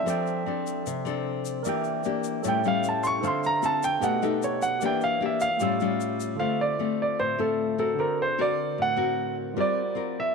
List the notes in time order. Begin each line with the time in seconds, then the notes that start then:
Already playing: C4 E5
0.03 F3 C4 D4 A4 C5
0.07 D5 G5, shaker
0.27 shaker
0.46 C4 D4 A4
0.67 shaker
0.86 C3, shaker
1.05 C4 D4 A4, shaker
1.45 shaker
1.63 E3 A#3 D4 A#4 D5 E5, shaker
1.67 G4 G5
1.84 shaker
2.04 A#3 D4 G4, shaker
2.24 shaker
2.43 A2 G3 C#4 E4 A4 C#5, shaker
2.47 E5 G5
2.64 G3 C#4 E4 F5, shaker
2.84 shaker
2.89 A5
3.03 C6 C#6, shaker
3.20 D3 D4 F4 A4 C5
3.24 C4 E5 F5 C6, shaker
3.44 A#5, shaker
3.62 C4 F4 A4 A5, shaker
3.83 G5, shaker
4.00 B2 A3 B3 D#4 G4 A4 D#5 F#5, shaker
4.05 F#5
4.22 A3 D#4 G4 A4, shaker
4.42 C#5, shaker
4.62 F#5, shaker
4.79 E3 A#3 D4 G4 A#4, shaker
4.84 D5 E5 G5
5.01 F5, shaker
5.21 A#3 D4 G4
5.26 E5
5.40 F5, shaker
5.57 G3 A3 F4 G4, shaker
5.61 A2 C#4 F4 C#5 E6
5.80 G3 C#4 F4, shaker
6.00 shaker
6.20 shaker
6.35 D3 F4 A4
6.40 A3 C4 F4 C5 E5 F5
6.61 D5
6.79 A3 C4 F4
7.02 D5
7.19 A2 C5
7.38 A3 C4 F4 A4
7.78 C4 F#4 A4 A#4
7.94 D3 F#4
7.99 D3 A#4 C5
8.22 C5
8.38 C4 F#4 A#4 D5
8.78 A2 F#5
8.96 C4 F#4 A#4
9.53 G3 C4 F4 A#4
9.57 F4 A#4 C5 D5
9.95 C4 F4 A#4
10.20 E5